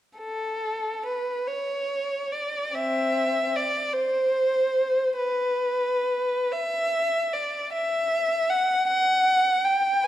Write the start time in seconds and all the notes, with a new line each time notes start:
0.19 A4
1.06 B4
1.47 C#5
2.32 D5
2.74 C4 E5
3.56 D5
3.94 C5
5.17 B4
6.52 E5
7.33 D5
7.73 E5
8.50 F#5
8.88 F#5
9.65 G5
10.04 B4 G#5